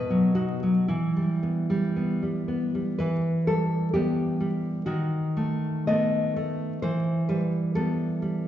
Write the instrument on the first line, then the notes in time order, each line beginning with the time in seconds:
nylon-string guitar
Already playing: B2 B4
0.10 F#3
0.35 D#4 F#4
0.63 F#3
0.88 E3 E4
1.16 G3
1.43 B3
1.70 G3
1.96 B3
2.23 G3
2.48 B3
2.75 G3
2.98 E3 B4
3.47 G3 A4
3.94 G3 B3 G4
4.40 G3
4.86 D#3 F#4
5.37 A3
5.87 A3 B3 D#5
6.36 A3
6.82 E3 C5
7.29 G3 B4
7.75 G3 B3 A4
8.22 G3